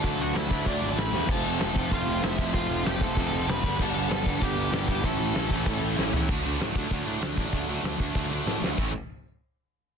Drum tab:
CC |--------|x-------|--------|x-------|
HH |o-o-o-o-|--o-o-o-|o-o-o-o-|--o-o-o-|
SD |--o---oo|--o---o-|--o---o-|--o---o-|
FT |--------|--------|--------|--------|
BD |o--oo---|o--oo--o|o--oo--o|o--oo--o|

CC |--------|x-------|--------|x-------|
HH |o-o-o---|-ooooooo|oooooo--|--------|
SD |--o---o-|--o---o-|--o---oo|--------|
FT |-------o|--------|--------|--------|
BD |o--oo---|o--oo--o|o--oo---|o-------|